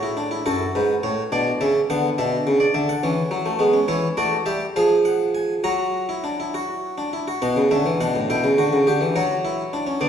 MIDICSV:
0, 0, Header, 1, 2, 480
1, 0, Start_track
1, 0, Tempo, 573066
1, 382, Time_signature, 6, 3, 24, 8
1, 3735, Tempo, 591716
1, 6135, Tempo, 575816
1, 8361, End_track
2, 0, Start_track
2, 0, Title_t, "Harpsichord"
2, 0, Program_c, 0, 6
2, 0, Note_on_c, 0, 45, 76
2, 0, Note_on_c, 0, 73, 68
2, 24, Note_on_c, 0, 64, 63
2, 138, Note_off_c, 0, 64, 0
2, 142, Note_on_c, 0, 62, 66
2, 259, Note_off_c, 0, 62, 0
2, 261, Note_on_c, 0, 64, 64
2, 360, Note_off_c, 0, 45, 0
2, 361, Note_off_c, 0, 73, 0
2, 379, Note_off_c, 0, 64, 0
2, 383, Note_on_c, 0, 42, 58
2, 384, Note_on_c, 0, 66, 62
2, 385, Note_on_c, 0, 69, 71
2, 533, Note_off_c, 0, 42, 0
2, 535, Note_off_c, 0, 69, 0
2, 631, Note_on_c, 0, 44, 57
2, 633, Note_on_c, 0, 71, 63
2, 779, Note_off_c, 0, 44, 0
2, 780, Note_off_c, 0, 71, 0
2, 866, Note_on_c, 0, 73, 65
2, 867, Note_on_c, 0, 45, 57
2, 1017, Note_off_c, 0, 45, 0
2, 1017, Note_off_c, 0, 73, 0
2, 1089, Note_off_c, 0, 66, 0
2, 1106, Note_on_c, 0, 74, 66
2, 1108, Note_on_c, 0, 47, 62
2, 1108, Note_on_c, 0, 62, 61
2, 1257, Note_off_c, 0, 74, 0
2, 1258, Note_off_c, 0, 47, 0
2, 1258, Note_off_c, 0, 62, 0
2, 1347, Note_on_c, 0, 76, 67
2, 1348, Note_on_c, 0, 49, 58
2, 1349, Note_on_c, 0, 61, 61
2, 1497, Note_off_c, 0, 49, 0
2, 1497, Note_off_c, 0, 76, 0
2, 1498, Note_off_c, 0, 61, 0
2, 1591, Note_on_c, 0, 50, 66
2, 1591, Note_on_c, 0, 78, 76
2, 1592, Note_on_c, 0, 59, 64
2, 1739, Note_off_c, 0, 50, 0
2, 1739, Note_off_c, 0, 59, 0
2, 1739, Note_off_c, 0, 78, 0
2, 1828, Note_on_c, 0, 62, 67
2, 1829, Note_on_c, 0, 47, 78
2, 1831, Note_on_c, 0, 76, 67
2, 1977, Note_off_c, 0, 47, 0
2, 2068, Note_on_c, 0, 49, 78
2, 2175, Note_off_c, 0, 76, 0
2, 2179, Note_on_c, 0, 74, 67
2, 2214, Note_off_c, 0, 49, 0
2, 2296, Note_off_c, 0, 74, 0
2, 2298, Note_on_c, 0, 50, 73
2, 2298, Note_on_c, 0, 76, 64
2, 2415, Note_off_c, 0, 76, 0
2, 2422, Note_on_c, 0, 78, 65
2, 2446, Note_off_c, 0, 50, 0
2, 2518, Note_off_c, 0, 62, 0
2, 2540, Note_on_c, 0, 52, 77
2, 2540, Note_on_c, 0, 61, 67
2, 2687, Note_off_c, 0, 52, 0
2, 2773, Note_on_c, 0, 54, 73
2, 2885, Note_off_c, 0, 61, 0
2, 2896, Note_on_c, 0, 57, 65
2, 2921, Note_off_c, 0, 54, 0
2, 3008, Note_on_c, 0, 59, 73
2, 3011, Note_off_c, 0, 57, 0
2, 3011, Note_on_c, 0, 56, 85
2, 3126, Note_off_c, 0, 59, 0
2, 3127, Note_on_c, 0, 61, 68
2, 3160, Note_off_c, 0, 56, 0
2, 3227, Note_off_c, 0, 78, 0
2, 3245, Note_off_c, 0, 61, 0
2, 3251, Note_on_c, 0, 52, 72
2, 3253, Note_on_c, 0, 73, 82
2, 3254, Note_on_c, 0, 64, 68
2, 3400, Note_off_c, 0, 52, 0
2, 3402, Note_off_c, 0, 64, 0
2, 3402, Note_off_c, 0, 73, 0
2, 3495, Note_on_c, 0, 57, 74
2, 3496, Note_on_c, 0, 66, 66
2, 3497, Note_on_c, 0, 74, 74
2, 3645, Note_off_c, 0, 57, 0
2, 3645, Note_off_c, 0, 66, 0
2, 3646, Note_off_c, 0, 74, 0
2, 3734, Note_on_c, 0, 67, 64
2, 3735, Note_on_c, 0, 76, 74
2, 3737, Note_on_c, 0, 55, 64
2, 3881, Note_off_c, 0, 67, 0
2, 3882, Note_off_c, 0, 76, 0
2, 3883, Note_off_c, 0, 55, 0
2, 3980, Note_on_c, 0, 53, 69
2, 3981, Note_on_c, 0, 77, 72
2, 3982, Note_on_c, 0, 68, 64
2, 4126, Note_off_c, 0, 77, 0
2, 4215, Note_on_c, 0, 78, 67
2, 4364, Note_off_c, 0, 78, 0
2, 4454, Note_on_c, 0, 80, 72
2, 4604, Note_off_c, 0, 80, 0
2, 4677, Note_off_c, 0, 53, 0
2, 4678, Note_off_c, 0, 68, 0
2, 4692, Note_on_c, 0, 54, 59
2, 4692, Note_on_c, 0, 66, 56
2, 4693, Note_on_c, 0, 82, 58
2, 5044, Note_off_c, 0, 66, 0
2, 5058, Note_on_c, 0, 64, 52
2, 5174, Note_off_c, 0, 64, 0
2, 5178, Note_on_c, 0, 62, 53
2, 5294, Note_off_c, 0, 62, 0
2, 5308, Note_on_c, 0, 64, 51
2, 5419, Note_off_c, 0, 64, 0
2, 5426, Note_on_c, 0, 66, 55
2, 5770, Note_off_c, 0, 66, 0
2, 5777, Note_on_c, 0, 62, 50
2, 5863, Note_off_c, 0, 54, 0
2, 5863, Note_off_c, 0, 82, 0
2, 5893, Note_off_c, 0, 62, 0
2, 5903, Note_on_c, 0, 64, 54
2, 6016, Note_off_c, 0, 64, 0
2, 6021, Note_on_c, 0, 66, 52
2, 6133, Note_off_c, 0, 66, 0
2, 6136, Note_on_c, 0, 59, 73
2, 6136, Note_on_c, 0, 78, 64
2, 6139, Note_on_c, 0, 47, 60
2, 6254, Note_off_c, 0, 47, 0
2, 6256, Note_on_c, 0, 49, 62
2, 6286, Note_off_c, 0, 59, 0
2, 6286, Note_off_c, 0, 78, 0
2, 6373, Note_off_c, 0, 49, 0
2, 6380, Note_on_c, 0, 50, 64
2, 6380, Note_on_c, 0, 61, 72
2, 6381, Note_on_c, 0, 76, 63
2, 6496, Note_off_c, 0, 50, 0
2, 6502, Note_on_c, 0, 52, 62
2, 6529, Note_off_c, 0, 61, 0
2, 6530, Note_off_c, 0, 76, 0
2, 6617, Note_off_c, 0, 52, 0
2, 6625, Note_on_c, 0, 62, 70
2, 6625, Note_on_c, 0, 78, 63
2, 6626, Note_on_c, 0, 47, 59
2, 6739, Note_off_c, 0, 47, 0
2, 6749, Note_on_c, 0, 45, 61
2, 6773, Note_off_c, 0, 62, 0
2, 6773, Note_off_c, 0, 78, 0
2, 6861, Note_off_c, 0, 45, 0
2, 6870, Note_on_c, 0, 47, 60
2, 6870, Note_on_c, 0, 64, 76
2, 6871, Note_on_c, 0, 79, 64
2, 6982, Note_off_c, 0, 47, 0
2, 6986, Note_on_c, 0, 49, 64
2, 7016, Note_off_c, 0, 64, 0
2, 7100, Note_off_c, 0, 49, 0
2, 7106, Note_on_c, 0, 50, 61
2, 7107, Note_on_c, 0, 66, 67
2, 7220, Note_off_c, 0, 50, 0
2, 7227, Note_on_c, 0, 49, 60
2, 7254, Note_off_c, 0, 66, 0
2, 7340, Note_off_c, 0, 49, 0
2, 7347, Note_on_c, 0, 67, 84
2, 7351, Note_on_c, 0, 50, 65
2, 7460, Note_on_c, 0, 52, 64
2, 7462, Note_off_c, 0, 50, 0
2, 7493, Note_off_c, 0, 67, 0
2, 7563, Note_off_c, 0, 79, 0
2, 7576, Note_off_c, 0, 52, 0
2, 7584, Note_on_c, 0, 66, 84
2, 7585, Note_on_c, 0, 73, 63
2, 7588, Note_on_c, 0, 54, 71
2, 7730, Note_off_c, 0, 66, 0
2, 7826, Note_on_c, 0, 64, 82
2, 7971, Note_off_c, 0, 64, 0
2, 8065, Note_on_c, 0, 62, 75
2, 8176, Note_off_c, 0, 62, 0
2, 8176, Note_on_c, 0, 61, 77
2, 8276, Note_off_c, 0, 73, 0
2, 8278, Note_off_c, 0, 54, 0
2, 8291, Note_off_c, 0, 61, 0
2, 8294, Note_on_c, 0, 50, 71
2, 8296, Note_on_c, 0, 59, 80
2, 8296, Note_on_c, 0, 74, 66
2, 8361, Note_off_c, 0, 50, 0
2, 8361, Note_off_c, 0, 59, 0
2, 8361, Note_off_c, 0, 74, 0
2, 8361, End_track
0, 0, End_of_file